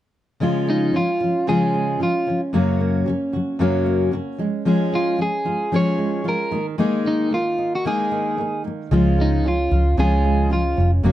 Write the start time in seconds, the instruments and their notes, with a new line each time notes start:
0.40 steel-string acoustic guitar C#3 F3 G#3 C#4 F4, nylon-string guitar G#3
0.67 nylon-string guitar G#3, clean electric guitar D#4
0.93 steel-string acoustic guitar C#3 F3, nylon-string guitar C#4, clean electric guitar F4
1.20 steel-string acoustic guitar C#3 F3, nylon-string guitar F4
1.47 steel-string acoustic guitar C#3 F3 G#3 C#4 F4, nylon-string guitar C#4, clean electric guitar G#4
1.74 nylon-string guitar G#3
1.99 steel-string acoustic guitar C#3 F3, nylon-string guitar F4, clean electric guitar F4
2.26 steel-string acoustic guitar C#3 F3, nylon-string guitar C#4
2.53 steel-string acoustic guitar F#2 C#3 F#3 A#3 C#4 F#4, nylon-string guitar A#3
2.80 nylon-string guitar A#3
3.06 steel-string acoustic guitar F#2 C#3 F#3, nylon-string guitar C#4
3.32 steel-string acoustic guitar F#2 C#3 F#3, nylon-string guitar F#4
3.59 steel-string acoustic guitar F#2 C#3 F#3 A#3 C#4 F#4, nylon-string guitar C#4
3.86 nylon-string guitar A#3
4.11 steel-string acoustic guitar F#2 C#3 F#3, nylon-string guitar F#4
4.38 steel-string acoustic guitar F3 G#3, nylon-string guitar G#3
4.65 steel-string acoustic guitar F3 G#3 C#4 G#4, nylon-string guitar G#3
4.92 nylon-string guitar G#3, clean electric guitar F4
5.18 steel-string acoustic guitar F3 G#3, nylon-string guitar C#4, clean electric guitar G#4
5.45 steel-string acoustic guitar F3 G#3, nylon-string guitar F4
5.72 steel-string acoustic guitar F3 G#3 C#4 G#4, nylon-string guitar C#4
5.76 clean electric guitar C#5
5.98 nylon-string guitar G#3
6.24 steel-string acoustic guitar F3 G#3, nylon-string guitar F4
6.29 clean electric guitar A#4
6.51 nylon-string guitar D#3, steel-string acoustic guitar G#3 A#3
6.78 nylon-string guitar D#3, steel-string acoustic guitar G#3 A#3 D#4 G#4
7.05 nylon-string guitar D#3, clean electric guitar D#4
7.31 steel-string acoustic guitar G#3 A#3, nylon-string guitar A#3, clean electric guitar F4
7.58 nylon-string guitar D#4
7.75 clean electric guitar F#4
7.85 steel-string acoustic guitar G#3 A#3 D#4 G#4, nylon-string guitar A#3, clean electric guitar G#4
8.11 nylon-string guitar D#3
8.37 steel-string acoustic guitar G#3 A#3, nylon-string guitar D#4
8.64 steel-string acoustic guitar G#3 A#3, nylon-string guitar A#3
8.91 fingered electric bass C#2, steel-string acoustic guitar C#3 F3 G#3 C#4 F4, nylon-string guitar G#3
9.18 nylon-string guitar G#3, clean electric guitar D#4
9.44 steel-string acoustic guitar C#3 F3, nylon-string guitar C#4
9.48 clean electric guitar F4
9.70 fingered electric bass C#2, steel-string acoustic guitar C#3 F3, nylon-string guitar F4
9.97 fingered electric bass C#2, steel-string acoustic guitar C#3 F3 G#3 C#4 F4, nylon-string guitar C#4, clean electric guitar G#4
10.25 nylon-string guitar G#3
10.50 steel-string acoustic guitar C#3 F3, nylon-string guitar F4, clean electric guitar F4
10.76 fingered electric bass F1, steel-string acoustic guitar C#3 F3, nylon-string guitar C#4
11.03 fingered electric bass F#1, steel-string acoustic guitar F#2 C#3 F#3 A#3 C#4 F#4, nylon-string guitar A#3